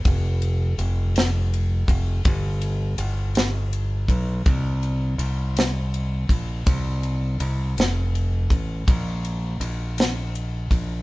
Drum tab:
RD |xxxxxx|xxxxxx|xxxxxx|xxxxxx|
SD |---o--|---o--|---o--|---o--|
BD |o----o|o----o|o----o|o----o|

RD |xxxxxx|
SD |---o--|
BD |o----o|